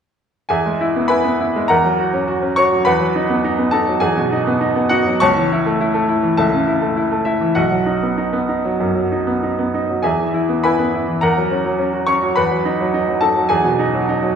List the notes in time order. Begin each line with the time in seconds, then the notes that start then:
0.49 E2 G#4 E5 G#5
0.66 G#3
0.81 E4
0.96 B3
1.08 E4 B4 G#5 B5
1.24 B3
1.40 E4
1.56 G#3
1.68 E2 A#4 F#5 A#5
1.85 F#3
1.99 F#4
2.13 C#4
2.28 F#4
2.42 C#4
2.56 F#4 C#5 C#6
2.72 F#3
2.85 E2 B4 F#5 B5
3.00 F#3
3.16 D#4
3.30 B3
3.44 D#4
3.58 B3
3.71 D#4 A4 A5
3.88 F#3
4.00 E2 G#4 G#5
4.17 B2
4.32 D#4
4.47 B3
4.61 D#4
4.76 B3
4.89 D#4 F#4 F#5
5.07 F#3
5.20 C#2 C#5 A5 C#6
5.36 E3
5.52 E4
5.66 A3
5.81 E4
5.94 A3
6.09 E4
6.23 E3
6.37 C#2 A4 E5 A5
6.53 C#3
6.67 E4
6.82 A3
6.97 E4
7.12 A3
7.25 E4 E5
7.41 E3
7.55 B1 F#4 D#5 F#5
7.71 F#3
7.86 D#4
8.02 B3
8.18 D#4
8.33 B3
8.49 D#4
8.65 F#3
8.80 F#2
8.95 F#3
9.12 D#4
9.27 B3
9.43 D#4
9.59 B3
9.74 D#4
9.90 F#3
10.03 E2 G#4 E5 G#5
10.19 E3
10.34 E4
10.49 B3
10.64 E4 B4 G#5 B5
10.79 B3
10.94 E4
11.08 E3
11.21 E2 A#4 F#5 A#5
11.37 F#3
11.51 C#4
11.65 F#3
11.78 C#4
11.93 F#4
12.07 C#4 C#5 C#6
12.22 F#3
12.36 E2 B4 F#5 B5
12.51 F#3
12.65 D#4
12.81 F#3
12.94 D#4
13.08 F#3
13.21 D#4 A4 A5
13.36 F#3
13.49 E2 G#4 G#5
13.64 B2
13.79 D#4
13.94 F#3
14.09 D#4
14.23 F#3